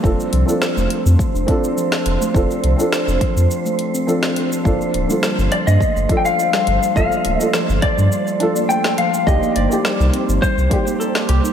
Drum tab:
HH |--x---x---x---x-|--x---x---x---x-|--x---x---x---x-|--x---x---x---x-|
SH |xx-xxx-xxx-xxx-x|xx-xxx-xxx-xxx-x|xx-xxx-xxx-xxx-x|xx-xxx-xxx-xxx-x|
SD |----o--------o--|----o--------o--|----o--------o--|----o--------o--|
BD |o-------o-o-----|o-----o---------|o-------o-o-----|o-----o---------|

HH |--x---x---x---x-|
SH |xx-xxx-xxx-xxx-x|
SD |----o--------o--|
BD |o-------o-o-----|